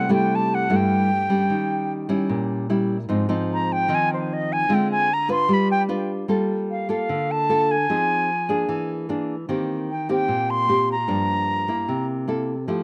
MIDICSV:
0, 0, Header, 1, 3, 480
1, 0, Start_track
1, 0, Key_signature, -3, "minor"
1, 0, Tempo, 399467
1, 1802, Time_signature, 4, 2, 24, 8
1, 7556, Key_signature, -2, "minor"
1, 15419, End_track
2, 0, Start_track
2, 0, Title_t, "Flute"
2, 0, Program_c, 0, 73
2, 0, Note_on_c, 0, 78, 80
2, 149, Note_off_c, 0, 78, 0
2, 159, Note_on_c, 0, 79, 85
2, 422, Note_on_c, 0, 81, 85
2, 440, Note_off_c, 0, 79, 0
2, 654, Note_on_c, 0, 78, 93
2, 672, Note_off_c, 0, 81, 0
2, 912, Note_on_c, 0, 79, 88
2, 930, Note_off_c, 0, 78, 0
2, 2317, Note_off_c, 0, 79, 0
2, 4247, Note_on_c, 0, 82, 80
2, 4472, Note_on_c, 0, 79, 95
2, 4490, Note_off_c, 0, 82, 0
2, 4739, Note_on_c, 0, 80, 97
2, 4757, Note_off_c, 0, 79, 0
2, 4949, Note_off_c, 0, 80, 0
2, 4964, Note_on_c, 0, 72, 44
2, 5204, Note_on_c, 0, 75, 88
2, 5222, Note_off_c, 0, 72, 0
2, 5437, Note_on_c, 0, 80, 103
2, 5455, Note_off_c, 0, 75, 0
2, 5694, Note_on_c, 0, 79, 87
2, 5712, Note_off_c, 0, 80, 0
2, 5897, Note_off_c, 0, 79, 0
2, 5904, Note_on_c, 0, 80, 102
2, 6168, Note_on_c, 0, 82, 91
2, 6186, Note_off_c, 0, 80, 0
2, 6378, Note_off_c, 0, 82, 0
2, 6385, Note_on_c, 0, 84, 114
2, 6649, Note_on_c, 0, 83, 93
2, 6667, Note_off_c, 0, 84, 0
2, 6854, Note_off_c, 0, 83, 0
2, 6862, Note_on_c, 0, 79, 96
2, 6998, Note_off_c, 0, 79, 0
2, 8058, Note_on_c, 0, 77, 70
2, 8270, Note_off_c, 0, 77, 0
2, 8300, Note_on_c, 0, 77, 83
2, 8785, Note_on_c, 0, 81, 95
2, 8803, Note_off_c, 0, 77, 0
2, 9263, Note_on_c, 0, 80, 92
2, 9281, Note_off_c, 0, 81, 0
2, 10690, Note_off_c, 0, 80, 0
2, 11904, Note_on_c, 0, 79, 73
2, 12115, Note_off_c, 0, 79, 0
2, 12159, Note_on_c, 0, 79, 89
2, 12618, Note_on_c, 0, 84, 95
2, 12636, Note_off_c, 0, 79, 0
2, 13088, Note_off_c, 0, 84, 0
2, 13118, Note_on_c, 0, 82, 88
2, 14492, Note_off_c, 0, 82, 0
2, 15419, End_track
3, 0, Start_track
3, 0, Title_t, "Nylon-string guitar"
3, 0, Program_c, 1, 24
3, 0, Note_on_c, 1, 48, 65
3, 110, Note_on_c, 1, 55, 66
3, 119, Note_on_c, 1, 57, 61
3, 124, Note_on_c, 1, 64, 67
3, 798, Note_off_c, 1, 55, 0
3, 802, Note_off_c, 1, 57, 0
3, 805, Note_off_c, 1, 64, 0
3, 811, Note_off_c, 1, 48, 0
3, 838, Note_on_c, 1, 43, 69
3, 838, Note_on_c, 1, 55, 61
3, 843, Note_on_c, 1, 57, 55
3, 847, Note_on_c, 1, 64, 63
3, 1317, Note_off_c, 1, 55, 0
3, 1319, Note_off_c, 1, 57, 0
3, 1322, Note_off_c, 1, 64, 0
3, 1559, Note_on_c, 1, 55, 61
3, 1561, Note_on_c, 1, 61, 56
3, 1776, Note_off_c, 1, 43, 0
3, 1799, Note_on_c, 1, 51, 65
3, 2482, Note_off_c, 1, 55, 0
3, 2482, Note_off_c, 1, 61, 0
3, 2509, Note_on_c, 1, 55, 63
3, 2517, Note_on_c, 1, 61, 61
3, 2520, Note_on_c, 1, 64, 70
3, 2736, Note_off_c, 1, 51, 0
3, 2756, Note_on_c, 1, 46, 72
3, 3196, Note_off_c, 1, 55, 0
3, 3200, Note_off_c, 1, 61, 0
3, 3201, Note_off_c, 1, 64, 0
3, 3238, Note_on_c, 1, 55, 52
3, 3242, Note_on_c, 1, 61, 51
3, 3245, Note_on_c, 1, 64, 67
3, 3562, Note_off_c, 1, 55, 0
3, 3563, Note_off_c, 1, 61, 0
3, 3565, Note_off_c, 1, 64, 0
3, 3694, Note_off_c, 1, 46, 0
3, 3708, Note_on_c, 1, 44, 73
3, 3712, Note_on_c, 1, 53, 54
3, 3718, Note_on_c, 1, 63, 60
3, 3723, Note_on_c, 1, 60, 53
3, 3917, Note_off_c, 1, 53, 0
3, 3919, Note_off_c, 1, 60, 0
3, 3921, Note_off_c, 1, 63, 0
3, 3950, Note_on_c, 1, 53, 69
3, 3954, Note_on_c, 1, 60, 59
3, 3959, Note_on_c, 1, 63, 69
3, 4636, Note_off_c, 1, 53, 0
3, 4637, Note_off_c, 1, 60, 0
3, 4640, Note_off_c, 1, 63, 0
3, 4650, Note_off_c, 1, 44, 0
3, 4665, Note_on_c, 1, 51, 75
3, 4672, Note_on_c, 1, 53, 61
3, 4673, Note_on_c, 1, 60, 57
3, 4681, Note_on_c, 1, 63, 66
3, 5594, Note_off_c, 1, 53, 0
3, 5597, Note_off_c, 1, 60, 0
3, 5599, Note_off_c, 1, 63, 0
3, 5607, Note_off_c, 1, 51, 0
3, 5633, Note_on_c, 1, 50, 68
3, 5640, Note_on_c, 1, 56, 57
3, 5645, Note_on_c, 1, 60, 56
3, 5646, Note_on_c, 1, 65, 57
3, 6114, Note_off_c, 1, 56, 0
3, 6115, Note_off_c, 1, 60, 0
3, 6118, Note_off_c, 1, 65, 0
3, 6348, Note_on_c, 1, 62, 60
3, 6353, Note_on_c, 1, 65, 62
3, 6359, Note_on_c, 1, 71, 71
3, 6571, Note_off_c, 1, 50, 0
3, 6593, Note_on_c, 1, 55, 77
3, 7033, Note_off_c, 1, 62, 0
3, 7036, Note_off_c, 1, 65, 0
3, 7038, Note_off_c, 1, 71, 0
3, 7072, Note_on_c, 1, 62, 54
3, 7077, Note_on_c, 1, 65, 56
3, 7083, Note_on_c, 1, 71, 66
3, 7529, Note_off_c, 1, 55, 0
3, 7534, Note_off_c, 1, 62, 0
3, 7537, Note_off_c, 1, 65, 0
3, 7539, Note_off_c, 1, 71, 0
3, 7549, Note_on_c, 1, 55, 63
3, 7556, Note_on_c, 1, 58, 51
3, 7559, Note_on_c, 1, 65, 49
3, 7563, Note_on_c, 1, 69, 53
3, 8235, Note_off_c, 1, 58, 0
3, 8238, Note_off_c, 1, 65, 0
3, 8240, Note_off_c, 1, 69, 0
3, 8276, Note_on_c, 1, 58, 58
3, 8282, Note_on_c, 1, 65, 55
3, 8289, Note_on_c, 1, 69, 59
3, 8489, Note_off_c, 1, 55, 0
3, 8522, Note_on_c, 1, 50, 69
3, 8957, Note_off_c, 1, 58, 0
3, 8960, Note_off_c, 1, 65, 0
3, 8962, Note_off_c, 1, 69, 0
3, 9002, Note_on_c, 1, 58, 50
3, 9008, Note_on_c, 1, 65, 53
3, 9012, Note_on_c, 1, 69, 63
3, 9308, Note_off_c, 1, 58, 0
3, 9310, Note_off_c, 1, 65, 0
3, 9313, Note_off_c, 1, 69, 0
3, 9455, Note_off_c, 1, 50, 0
3, 9486, Note_on_c, 1, 53, 62
3, 9489, Note_on_c, 1, 63, 52
3, 9490, Note_on_c, 1, 60, 50
3, 9496, Note_on_c, 1, 68, 54
3, 9957, Note_off_c, 1, 60, 0
3, 9960, Note_off_c, 1, 63, 0
3, 9962, Note_off_c, 1, 68, 0
3, 10198, Note_on_c, 1, 58, 53
3, 10202, Note_on_c, 1, 62, 59
3, 10209, Note_on_c, 1, 68, 61
3, 10417, Note_off_c, 1, 53, 0
3, 10437, Note_on_c, 1, 52, 74
3, 10879, Note_off_c, 1, 58, 0
3, 10881, Note_off_c, 1, 62, 0
3, 10883, Note_off_c, 1, 68, 0
3, 10922, Note_on_c, 1, 58, 52
3, 10930, Note_on_c, 1, 62, 60
3, 10933, Note_on_c, 1, 68, 55
3, 11229, Note_off_c, 1, 58, 0
3, 11231, Note_off_c, 1, 62, 0
3, 11234, Note_off_c, 1, 68, 0
3, 11373, Note_off_c, 1, 52, 0
3, 11399, Note_on_c, 1, 51, 65
3, 11400, Note_on_c, 1, 58, 58
3, 11403, Note_on_c, 1, 60, 58
3, 11410, Note_on_c, 1, 67, 59
3, 11874, Note_off_c, 1, 58, 0
3, 11877, Note_off_c, 1, 60, 0
3, 11881, Note_off_c, 1, 67, 0
3, 12124, Note_on_c, 1, 58, 60
3, 12129, Note_on_c, 1, 60, 54
3, 12133, Note_on_c, 1, 67, 61
3, 12335, Note_off_c, 1, 51, 0
3, 12355, Note_on_c, 1, 46, 71
3, 12803, Note_off_c, 1, 58, 0
3, 12804, Note_off_c, 1, 60, 0
3, 12807, Note_off_c, 1, 67, 0
3, 12840, Note_on_c, 1, 58, 54
3, 12851, Note_on_c, 1, 60, 52
3, 12851, Note_on_c, 1, 67, 58
3, 13149, Note_off_c, 1, 58, 0
3, 13151, Note_off_c, 1, 60, 0
3, 13154, Note_off_c, 1, 67, 0
3, 13293, Note_off_c, 1, 46, 0
3, 13310, Note_on_c, 1, 43, 67
3, 13311, Note_on_c, 1, 53, 48
3, 13316, Note_on_c, 1, 58, 51
3, 13322, Note_on_c, 1, 62, 56
3, 13996, Note_off_c, 1, 53, 0
3, 13999, Note_off_c, 1, 58, 0
3, 14002, Note_off_c, 1, 62, 0
3, 14038, Note_on_c, 1, 58, 61
3, 14047, Note_on_c, 1, 64, 55
3, 14252, Note_off_c, 1, 43, 0
3, 14281, Note_on_c, 1, 48, 65
3, 14722, Note_off_c, 1, 58, 0
3, 14723, Note_off_c, 1, 64, 0
3, 14750, Note_on_c, 1, 58, 54
3, 14757, Note_on_c, 1, 64, 50
3, 14763, Note_on_c, 1, 69, 57
3, 15064, Note_off_c, 1, 58, 0
3, 15068, Note_off_c, 1, 64, 0
3, 15071, Note_off_c, 1, 69, 0
3, 15217, Note_off_c, 1, 48, 0
3, 15234, Note_on_c, 1, 53, 62
3, 15235, Note_on_c, 1, 57, 50
3, 15238, Note_on_c, 1, 64, 48
3, 15244, Note_on_c, 1, 67, 54
3, 15419, Note_off_c, 1, 53, 0
3, 15419, Note_off_c, 1, 57, 0
3, 15419, Note_off_c, 1, 64, 0
3, 15419, Note_off_c, 1, 67, 0
3, 15419, End_track
0, 0, End_of_file